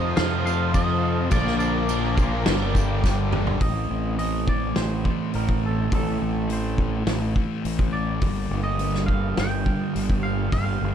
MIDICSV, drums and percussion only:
0, 0, Header, 1, 2, 480
1, 0, Start_track
1, 0, Tempo, 574713
1, 1100, Time_signature, 4, 2, 24, 8
1, 9142, End_track
2, 0, Start_track
2, 0, Title_t, "Drums"
2, 134, Note_on_c, 9, 54, 26
2, 141, Note_on_c, 9, 49, 64
2, 142, Note_on_c, 9, 38, 117
2, 217, Note_off_c, 9, 54, 0
2, 224, Note_off_c, 9, 49, 0
2, 225, Note_off_c, 9, 38, 0
2, 391, Note_on_c, 9, 54, 75
2, 474, Note_off_c, 9, 54, 0
2, 621, Note_on_c, 9, 36, 78
2, 621, Note_on_c, 9, 54, 96
2, 623, Note_on_c, 9, 49, 53
2, 704, Note_off_c, 9, 54, 0
2, 705, Note_off_c, 9, 36, 0
2, 707, Note_off_c, 9, 49, 0
2, 1094, Note_on_c, 9, 54, 76
2, 1100, Note_on_c, 9, 36, 119
2, 1102, Note_on_c, 9, 49, 65
2, 1177, Note_off_c, 9, 54, 0
2, 1184, Note_off_c, 9, 36, 0
2, 1185, Note_off_c, 9, 49, 0
2, 1228, Note_on_c, 9, 38, 33
2, 1311, Note_off_c, 9, 38, 0
2, 1337, Note_on_c, 9, 54, 74
2, 1420, Note_off_c, 9, 54, 0
2, 1578, Note_on_c, 9, 54, 91
2, 1582, Note_on_c, 9, 49, 54
2, 1662, Note_off_c, 9, 54, 0
2, 1666, Note_off_c, 9, 49, 0
2, 1817, Note_on_c, 9, 36, 86
2, 1827, Note_on_c, 9, 54, 67
2, 1900, Note_off_c, 9, 36, 0
2, 1911, Note_off_c, 9, 54, 0
2, 2053, Note_on_c, 9, 49, 65
2, 2054, Note_on_c, 9, 38, 110
2, 2064, Note_on_c, 9, 54, 28
2, 2137, Note_off_c, 9, 49, 0
2, 2138, Note_off_c, 9, 38, 0
2, 2148, Note_off_c, 9, 54, 0
2, 2297, Note_on_c, 9, 36, 77
2, 2307, Note_on_c, 9, 54, 78
2, 2380, Note_off_c, 9, 36, 0
2, 2390, Note_off_c, 9, 54, 0
2, 2537, Note_on_c, 9, 36, 86
2, 2540, Note_on_c, 9, 38, 58
2, 2552, Note_on_c, 9, 54, 92
2, 2621, Note_off_c, 9, 36, 0
2, 2624, Note_off_c, 9, 38, 0
2, 2635, Note_off_c, 9, 54, 0
2, 2777, Note_on_c, 9, 45, 98
2, 2861, Note_off_c, 9, 45, 0
2, 2897, Note_on_c, 9, 43, 93
2, 2980, Note_off_c, 9, 43, 0
2, 3012, Note_on_c, 9, 46, 58
2, 3015, Note_on_c, 9, 36, 105
2, 3095, Note_off_c, 9, 46, 0
2, 3099, Note_off_c, 9, 36, 0
2, 3499, Note_on_c, 9, 46, 49
2, 3582, Note_off_c, 9, 46, 0
2, 3738, Note_on_c, 9, 36, 80
2, 3822, Note_off_c, 9, 36, 0
2, 3974, Note_on_c, 9, 46, 49
2, 3975, Note_on_c, 9, 38, 100
2, 4057, Note_off_c, 9, 46, 0
2, 4058, Note_off_c, 9, 38, 0
2, 4219, Note_on_c, 9, 36, 70
2, 4303, Note_off_c, 9, 36, 0
2, 4456, Note_on_c, 9, 46, 44
2, 4539, Note_off_c, 9, 46, 0
2, 4583, Note_on_c, 9, 36, 81
2, 4666, Note_off_c, 9, 36, 0
2, 4945, Note_on_c, 9, 36, 112
2, 4946, Note_on_c, 9, 46, 55
2, 5028, Note_off_c, 9, 36, 0
2, 5029, Note_off_c, 9, 46, 0
2, 5426, Note_on_c, 9, 46, 45
2, 5509, Note_off_c, 9, 46, 0
2, 5665, Note_on_c, 9, 36, 77
2, 5748, Note_off_c, 9, 36, 0
2, 5903, Note_on_c, 9, 46, 53
2, 5904, Note_on_c, 9, 38, 101
2, 5987, Note_off_c, 9, 46, 0
2, 5988, Note_off_c, 9, 38, 0
2, 6146, Note_on_c, 9, 36, 67
2, 6229, Note_off_c, 9, 36, 0
2, 6389, Note_on_c, 9, 46, 55
2, 6472, Note_off_c, 9, 46, 0
2, 6507, Note_on_c, 9, 36, 82
2, 6590, Note_off_c, 9, 36, 0
2, 6861, Note_on_c, 9, 46, 55
2, 6865, Note_on_c, 9, 36, 111
2, 6944, Note_off_c, 9, 46, 0
2, 6948, Note_off_c, 9, 36, 0
2, 7342, Note_on_c, 9, 46, 51
2, 7425, Note_off_c, 9, 46, 0
2, 7469, Note_on_c, 9, 38, 28
2, 7553, Note_off_c, 9, 38, 0
2, 7587, Note_on_c, 9, 36, 74
2, 7671, Note_off_c, 9, 36, 0
2, 7829, Note_on_c, 9, 46, 49
2, 7830, Note_on_c, 9, 38, 101
2, 7912, Note_off_c, 9, 46, 0
2, 7913, Note_off_c, 9, 38, 0
2, 8069, Note_on_c, 9, 36, 67
2, 8152, Note_off_c, 9, 36, 0
2, 8315, Note_on_c, 9, 46, 50
2, 8399, Note_off_c, 9, 46, 0
2, 8432, Note_on_c, 9, 36, 78
2, 8515, Note_off_c, 9, 36, 0
2, 8790, Note_on_c, 9, 36, 103
2, 8794, Note_on_c, 9, 46, 53
2, 8873, Note_off_c, 9, 36, 0
2, 8878, Note_off_c, 9, 46, 0
2, 9142, End_track
0, 0, End_of_file